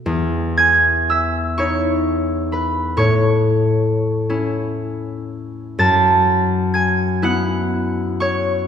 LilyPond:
\new Staff \with { instrumentName = "Harp" } { \time 6/8 \key e \major \tempo 4. = 42 << { <e' b' e''>8 <gis'' gis'''>8 <e'' e'''>8 <cis'' cis'''>4 <b' b''>8 | <cis'' cis'''>2. | <a'' a'''>4 <gis'' gis'''>8 <fis'' fis'''>4 <cis'' cis'''>8 | } \\ { e,4. <dis' e'>4. | a,4. <cis' e'>4. | fis,4. <b e'>4. | } >> }